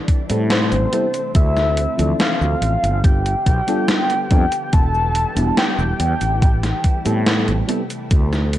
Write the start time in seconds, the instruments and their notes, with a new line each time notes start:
Already playing: string machine C3 E3 G3 A3 D4
0.08 kick, closed hi-hat
0.29 fretless electric bass A2, fm electric piano G3 A3 C4 E4 A4, closed hi-hat, cabasa
0.50 soft synth lead C5, snare, closed hi-hat, cabasa
0.72 fretless electric bass A1, closed hi-hat, cabasa
0.92 fm electric piano G3 B3 C4 E4 A4, closed hi-hat
1.14 closed hi-hat, cabasa
1.34 fretless electric bass D2, string machine C3 D3 C4, soft synth lead E5, kick, closed hi-hat, cabasa
1.57 snare, cabasa
1.77 closed hi-hat
1.97 fretless electric bass D2, fm electric piano E3 F3 C4 D4 A4, closed hi-hat, cabasa
2.20 soft synth lead F5, snare, closed hi-hat, cabasa
2.41 fretless electric bass D2, cabasa
2.62 fretless electric bass A1, closed hi-hat
2.83 fretless electric bass G1, closed hi-hat, cabasa
3.03 string machine F3 G3 B3 F4, soft synth lead G5, kick, closed hi-hat, cabasa
3.26 closed hi-hat, cabasa
3.46 fretless electric bass B1, kick, closed hi-hat
3.67 fm electric piano G3 B3 D4 F4 A4, closed hi-hat, cabasa
3.88 snare, closed hi-hat, cabasa
4.10 closed hi-hat, cabasa
4.30 fretless electric bass F2, fm electric piano G3 B3 D4 F4 A4, kick, closed hi-hat
4.52 closed hi-hat, cabasa
4.73 fretless electric bass E1, string machine E3 E4, soft synth lead A5, kick, closed hi-hat, cabasa
4.94 cabasa
5.15 closed hi-hat
5.35 fretless electric bass E1, fm electric piano G3 B3 D4 E4 G4, closed hi-hat, cabasa
5.57 soft synth lead G5, snare, closed hi-hat, cabasa
5.79 fretless electric bass E1, cabasa
6.00 fretless electric bass E2, closed hi-hat
6.21 fretless electric bass A1, closed hi-hat, cabasa
6.42 string machine C3 A3, kick, closed hi-hat, cabasa
6.63 snare, closed hi-hat, cabasa
6.84 kick, closed hi-hat
7.05 fretless electric bass A2, fm electric piano G3 B3 C4 E4 A4, closed hi-hat, cabasa
7.26 snare, closed hi-hat, cabasa
7.48 fretless electric bass A1, closed hi-hat, cabasa
7.68 fm electric piano G3 B3 C4 E4 A4, closed hi-hat
7.90 closed hi-hat, cabasa
8.11 fretless electric bass D2, string machine D3 F3 C4, kick, closed hi-hat, cabasa
8.33 snare, cabasa
8.53 closed hi-hat